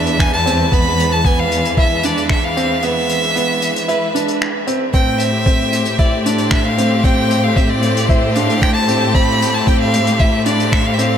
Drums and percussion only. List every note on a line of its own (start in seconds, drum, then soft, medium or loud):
0.06 closed hi-hat soft
0.20 finger snap medium
0.20 kick loud
0.47 closed hi-hat medium
0.72 kick loud
0.72 closed hi-hat medium
1.00 closed hi-hat medium
1.25 kick loud
1.25 closed hi-hat medium
1.51 closed hi-hat medium
1.65 closed hi-hat medium
1.77 kick loud
1.77 closed hi-hat medium
2.03 closed hi-hat medium
2.17 closed hi-hat soft
2.29 finger snap medium
2.29 kick loud
2.57 closed hi-hat medium
2.82 closed hi-hat medium
3.09 closed hi-hat medium
3.23 closed hi-hat soft
3.36 closed hi-hat medium
3.62 closed hi-hat medium
3.76 closed hi-hat medium
3.89 closed hi-hat soft
4.15 closed hi-hat medium
4.28 closed hi-hat soft
4.42 finger snap medium
4.67 closed hi-hat medium
4.93 kick loud
4.93 closed hi-hat medium
5.19 closed hi-hat medium
5.46 kick loud
5.46 closed hi-hat medium
5.73 closed hi-hat medium
5.85 closed hi-hat medium
5.99 kick loud
5.99 closed hi-hat medium
6.26 closed hi-hat medium
6.38 closed hi-hat soft
6.51 finger snap medium
6.51 kick loud
6.78 closed hi-hat medium
7.04 kick loud
7.04 closed hi-hat medium
7.31 closed hi-hat medium
7.56 kick loud
7.56 closed hi-hat medium
7.82 closed hi-hat medium
7.97 closed hi-hat medium
8.09 kick loud
8.09 closed hi-hat medium
8.35 closed hi-hat medium
8.50 closed hi-hat medium
8.62 finger snap medium
8.62 kick loud
8.88 closed hi-hat medium
9.15 kick loud
9.15 closed hi-hat medium
9.42 closed hi-hat medium
9.67 kick loud
9.67 closed hi-hat medium
9.94 closed hi-hat medium
10.07 closed hi-hat medium
10.19 kick loud
10.19 closed hi-hat medium
10.46 closed hi-hat medium
10.60 closed hi-hat medium
10.72 finger snap medium
10.72 kick loud
10.99 closed hi-hat medium